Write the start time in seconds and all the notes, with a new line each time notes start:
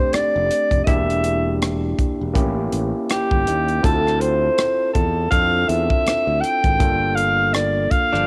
Already playing: A3 C4 D4 G4 C5
0.13 D5, muted fingered electric bass stroke, cross-stick, closed hi-hat
0.36 F1
0.51 closed hi-hat
0.71 F1, kick, closed hi-hat
0.84 E1 A#3 D4 E4 G4 D#5 E5, kick, closed hi-hat
1.10 closed hi-hat
1.24 closed hi-hat
1.62 cross-stick, closed hi-hat
1.99 muted fingered electric bass stroke, kick, closed hi-hat
2.21 E1
2.33 A1 A#3 C#4 E4 G4, kick, closed hi-hat
2.72 A1, closed hi-hat
3.10 G4, cross-stick, closed hi-hat
3.31 G1, kick
3.47 D#2, closed hi-hat
3.68 closed hi-hat
3.81 D2 C4 E4 F4 A4, kick, closed hi-hat
4.07 cross-stick
4.20 C5, closed hi-hat
4.58 cross-stick, closed hi-hat
4.93 E2 A4, kick, closed hi-hat
5.31 F2 C4 D4 F4 A4 F5, kick, closed hi-hat
5.69 E2 E5, closed hi-hat
5.90 kick
6.06 muted fingered electric bass stroke, cross-stick, closed hi-hat
6.27 D2
6.41 G5, closed hi-hat
6.64 G#1, kick, closed hi-hat
6.79 G1 A#3 D4 F4 A4, kick, closed hi-hat
7.15 F5, closed hi-hat
7.54 D5, cross-stick, closed hi-hat
7.91 F5, muted fingered electric bass stroke, kick, closed hi-hat
8.13 G1 F3 D4, cross-stick